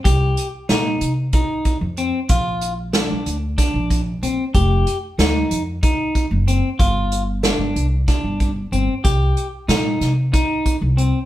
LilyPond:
<<
  \new Staff \with { instrumentName = "Clean electric guitar" } { \time 7/8 \key c \minor \tempo 4 = 93 g'4 ees'4 ees'4 c'8 | f'4 d'4 d'4 c'8 | g'4 ees'4 ees'4 c'8 | f'4 d'4 d'4 c'8 |
g'4 ees'4 ees'4 c'8 | }
  \new Staff \with { instrumentName = "Upright bass" } { \clef bass \time 7/8 \key c \minor c,8 r8 bes,8 c8 r8. f,8 r16 | bes,,4~ bes,,16 bes,,16 d,8 r16 bes,,8. bes,,16 r16 | f,,8 r8 d,8 f,8 r8. fis,,8 r16 | g,,4~ g,,16 g,,16 c,8 r16 g,,8. g,,16 r16 |
c,8 r8 bes,8 c8 r8. c,8 r16 | }
  \new DrumStaff \with { instrumentName = "Drums" } \drummode { \time 7/8 <hh bd>8 hh8 <hh sn>8 hh8 <hh bd>8 <hh bd>8 hh8 | <hh bd>8 hh8 <hh sn>8 hh8 <hh bd sn>8 <hh bd>8 hh8 | <hh bd>8 hh8 <hh sn>8 hh8 <hh bd>8 <hh bd>8 hh8 | <hh bd>8 hh8 <hh sn>8 hh8 <hh bd sn>8 <hh bd>8 hh8 |
<hh bd>8 hh8 <hh sn>8 <hh sn>8 <hh bd>8 <hh bd>8 hh8 | }
>>